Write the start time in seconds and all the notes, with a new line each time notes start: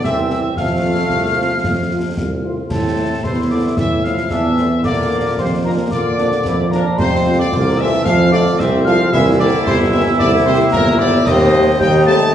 0.03 C2 E3 C4 E5 E6, concert bass drum, snare
0.30 G3 C4 G4, snare
0.57 F2 F3 A3 F5 F6, concert bass drum, snare
0.83 A3 C4 F4
1.10 C2, concert bass drum, snare
1.37 A3 C4 F4
1.64 F2, concert bass drum, snare
1.91 A3 C4 F4
2.17 C2, concert bass drum, snare
2.44 A3 C4 F4
2.70 A2 C4 A4 A5, concert bass drum, snare, crash
2.97 A3 C4 E4
3.24 E2 C3 E4 C5 C6, concert bass drum, snare
3.51 D3 A3 C4 E4 D5 D6
3.77 A2 E3 E5 E6, concert bass drum, snare
4.04 F3 A3 C4 E4 F5 F6, snare
4.18 snare
4.31 E2 E3 D4 E5 E6, concert bass drum, snare
4.57 A3 C4 E4, snare
4.84 A#2 D3 A#3 D5 D6, concert bass drum, snare, crash
5.11 F3 A#3 D4
5.38 F2 C3 C5 C6, concert bass drum, snare
5.65 A#2 F3 A#3 D4 A#4 A#5
5.91 A#2 D3 F4 D5 D6, concert bass drum, snare
6.18 F3 A#3 D4, snare
6.32 snare
6.45 F2 E4, concert bass drum, snare
6.71 A#2 F3 A#3 D4 A#4 A#5, snare
6.97 F2 C3 C4 C5 C6, concert bass drum, snare, crash
7.25 A3 C4 F4
7.38 D3 D5 D6
7.52 C2 A#3, concert bass drum, snare
7.78 E3 A3 C4 F4 E5 E6
8.04 F2 F3 F5 F6, concert bass drum, snare
8.32 D3 A3 C4 F4 D5 D6, snare
8.46 snare
8.59 C2 E3 C4 E5 E6, concert bass drum, snare
8.85 F3 A3 C4 F4 F5 F6, snare
9.12 C2 E3 E4 E5 E6, concert bass drum, snare, crash
9.39 D3 A#3 C4 G4 D5 D6
9.65 G1 C3 C5 C6, concert bass drum, snare
9.92 E3 A#3 C4 G4 E5 E6
10.19 C2 D3 D5 D6, concert bass drum, snare
10.46 C3 A#3 C4 G4 C5 C6
10.72 G1 A#2 A#4 A#5, concert bass drum, snare
10.99 D3 A#3 C4 G4 D5 D6
11.26 D#2 D#3 C4 D#5 D#6, concert bass drum, snare, crash
11.53 G3 C4 G4
11.80 D#2 G3 D#4 G5 G6, concert bass drum, snare
12.06 G3 A3 C4 G4 A5 A6